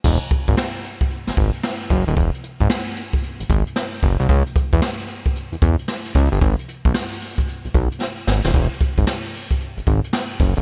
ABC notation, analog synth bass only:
X:1
M:4/4
L:1/16
Q:"Swing 16ths" 1/4=113
K:E
V:1 name="Analog synth bass" clef=bass
E,,, z2 G,,, z4 z G,,, G,,, z3 F,,, D,,, | E,,, z2 G,,, z4 z G,,, G,,, z3 F,,, =C,, | C,, z2 E,, z4 z E,, E,, z3 C,, =G,,, | G,,, z2 B,,, z4 z B,,, B,,, z3 G,,, D,,, |
E,,, z2 G,,, z4 z G,,, G,,, z3 F,,, D,,, |]